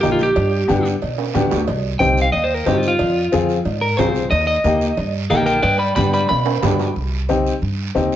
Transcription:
0.01 upright bass A#1, upright piano A#3 D#4 G4, clean electric guitar G4, cowbell, high conga, low timbale, short guiro
0.12 clean electric guitar F4
0.19 clean electric guitar G4, short guiro
0.36 upright bass G2, cowbell, high conga, long guiro
0.68 upright bass G2, upright piano B3 D4 G4, cowbell, high conga, short guiro
0.85 short guiro
1.02 upright bass B2, cowbell, high conga, long guiro
1.18 high timbale
1.34 upright bass F2, upright piano B3 D4 G4, cowbell, high conga, low conga, low timbale, short guiro
1.51 upright bass D2, low timbale, short guiro
1.68 upright bass C2, cowbell, high conga, long guiro
1.99 upright bass C2, upright piano C4 D#4 G4, clean electric guitar G5, cowbell, high conga, short guiro
2.18 short guiro
2.22 clean electric guitar F5
2.32 upright bass D#2, clean electric guitar D#5, cowbell, high conga, long guiro
2.44 clean electric guitar C5
2.54 clean electric guitar A#4
2.66 upright bass G2, upright piano C4 D#4 G4, clean electric guitar G4, cowbell, high conga, low timbale, short guiro
2.77 clean electric guitar F4
2.83 short guiro
2.88 clean electric guitar F4
2.99 upright bass F2, cowbell, high conga, long guiro
3.32 upright bass F2, upright piano C4 F4 G#4, cowbell, high conga, short guiro
3.49 short guiro
3.65 upright bass G#2, cowbell, high conga, long guiro
3.81 clean electric guitar A#4
3.97 upright bass C2, upright piano C4 F4 G#4, clean electric guitar C5, cowbell, high conga, low conga, low timbale, short guiro
4.15 short guiro
4.31 upright bass D#2, clean electric guitar D#5, cowbell, high conga, long guiro
4.47 clean electric guitar D#5
4.64 upright bass D#2, upright piano A#3 D#4 G4, cowbell, high conga, short guiro
4.81 short guiro
4.97 upright bass G2, cowbell, high conga, long guiro
5.30 upright bass A#1, upright piano A#3 D#4 G4, clean electric guitar A#4 G5, cowbell, high conga, short guiro
5.46 clean electric guitar A#4 G5, short guiro
5.62 upright bass G2, clean electric guitar B4 G5, cowbell, high conga, long guiro
5.78 clean electric guitar D5 B5
5.95 upright bass G2, upright piano B3 D4 G4, clean electric guitar D5 B5, cowbell, high conga, short guiro
6.13 clean electric guitar D5 B5, short guiro
6.29 upright bass B2, clean electric guitar B5, cowbell, high timbale, long guiro
6.46 high timbale
6.63 upright bass G2, upright piano B3 D4 G4, cowbell, high conga, low conga, low timbale, short guiro
6.79 low timbale, short guiro
6.96 upright bass C2, high conga, long guiro
7.29 upright piano C4 D#4 G4, high conga, short guiro
7.47 short guiro
7.62 upright bass G2, high conga, long guiro
7.95 upright bass D#2, upright piano C4 D#4 G4, high conga, short guiro
8.12 short guiro

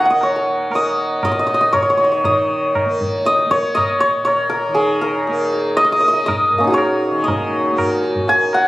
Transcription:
Already playing: tanpura A#2 D#3 A#3, santur G#5 A#5 C#6 D#6
0.05 tanpura A#3, santur F#5
0.10 santur D#5
0.21 santur C#5, tabla na
0.36 santur A#4
0.69 tanpura A#3, tabla na
0.75 santur D#5
1.23 santur D#5, tabla na, tabla ge
1.31 tanpura A#2, santur D#5
1.39 santur D#5
1.47 santur D#5
1.54 santur D#5
1.61 santur D#5
1.73 santur C#5, tabla na, tabla ge
1.82 santur C#5
1.90 tanpura D#3, santur C#5
1.97 santur C#5, tabla te
2.04 santur C#5
2.12 santur C#5
2.24 tanpura D#3, santur D#5, tabla tin, tabla ge
2.75 tabla na, tabla ge
2.85 tanpura A#3
3.01 tabla ge
3.25 santur D#5, tabla te
3.39 tabla te
3.46 tanpura A#3
3.51 santur C#5, tabla ke
3.64 tabla te
3.75 santur D#5, tabla na, tabla ge
4.00 santur C#5, tabla te
4.08 tanpura A#2
4.25 santur C#5, tabla na
4.50 santur A#4
4.69 tanpura D#3
4.74 santur G#4, tabla tin
5.01 santur A#4, tabla na
5.27 tanpura A#3, tabla te
5.53 tabla te
5.77 santur D#5, tabla na
5.84 santur D#5
5.91 tanpura A#3, santur D#5
6.00 santur D#5
6.08 santur D#5
6.13 santur D#5
6.26 santur D#5, tabla na, tabla ge
6.50 tanpura A#2, tabla ge
6.58 santur A#3 C#4
6.64 santur D#4 F#4
6.70 santur G#4 A#4 C#5
6.78 tabla na
7.11 tanpura D#3
7.24 santur D#5
7.28 tabla tin, tabla ge
7.72 tanpura A#3
7.78 tabla na, tabla ge
8.03 tabla te
8.16 tabla ge
8.28 santur G#5, tabla te
8.33 tanpura A#3
8.53 santur F#5, tabla na

